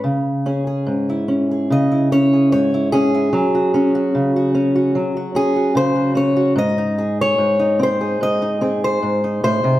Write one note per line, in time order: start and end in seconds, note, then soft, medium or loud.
0.04 0.88 C#3 medium
0.46 1.28 C#4 medium
0.46 0.67 G#4 soft
0.67 1.51 G#4 soft
0.86 1.71 G#2 soft
1.10 1.90 E4 soft
1.28 2.11 C#4 soft
1.51 2.33 G#4 soft
1.70 2.53 C#3 soft
1.70 2.12 D#5 medium
1.92 2.73 E4 soft
2.12 2.93 C#4 medium
2.12 2.51 C#5 medium
2.33 2.92 G#4 soft
2.52 3.33 G#2 medium
2.52 2.92 C#5 medium
2.74 3.13 E4 soft
2.92 3.29 C#4 medium
2.92 5.35 G#4 medium
3.14 3.29 E4 soft
3.33 4.94 F#3 medium
3.55 3.74 F#4 soft
3.74 4.53 C#4 medium
3.74 3.94 F#4 soft
3.95 4.35 F#4 soft
4.15 4.95 C#3 medium
4.36 4.74 F#4 soft
4.55 5.34 C#4 medium
4.76 5.16 F#4 soft
4.95 6.57 F#3 medium
5.17 5.55 F#4 soft
5.35 6.14 C#4 medium
5.35 5.76 G#4 medium
5.56 5.94 F#4 soft
5.75 6.57 C#3 medium
5.75 6.16 C5 medium
5.96 6.35 F#4 soft
6.15 6.51 C#4 medium
6.15 6.57 C#5 medium
6.36 6.52 F#4 soft
6.56 7.37 G#2 medium
6.56 7.19 D#5 medium
6.78 7.58 D#4 soft
6.98 8.00 G#4 soft
7.21 7.82 C#5 medium
7.38 8.20 G#2 medium
7.59 8.41 D#4 soft
7.79 8.60 C4 medium
7.79 8.22 C5 medium
8.01 8.61 G#4 soft
8.21 9.01 G#2 medium
8.21 8.84 D#5 medium
8.42 9.23 D#4 soft
8.61 9.80 C4 medium
8.61 9.80 G#4 soft
8.84 9.43 C5 medium
9.03 9.43 G#2 medium
9.24 9.80 D#4 soft
9.44 9.64 A2 medium
9.44 9.80 C5 medium
9.64 9.80 C3 medium